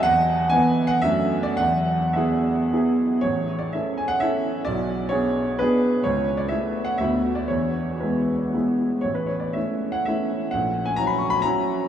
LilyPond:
\new Staff \with { instrumentName = "Grand piano" } { \time 3/4 \key a \major \tempo 4 = 121 << { fis''4 gis''8. fis''16 e''8. d''16 | fis''4 e''4. r8 | cis''8. d''16 e''8 gis''16 fis''16 e''4 | d''4 cis''4 b'4 |
cis''8. d''16 e''8. fis''16 e''8. d''16 | cis''4 b'4 r4 | cis''16 b'16 cis''16 d''16 e''8. fis''16 e''4 | fis''8. gis''16 ais''16 b''16 cis'''16 b''16 ais''4 | } \\ { e,4 <e b b'>4 <fis, a d' a'>4 | e,4 <b e' gis'>4 <b e' gis'>4 | a,,4 <cis' e' a'>4 <cis' e' a'>4 | b,,4 <b d' gis'>4 <b d' gis'>4 |
cis,4 <a e' a'>4 <d, a b fis'>4 | e,4 <gis b e'>4 <gis b e'>4 | a,,4 <a cis' e'>4 <a cis' e'>4 | ais,,4 <fis cis' e'>4 <fis cis' e'>4 | } >> }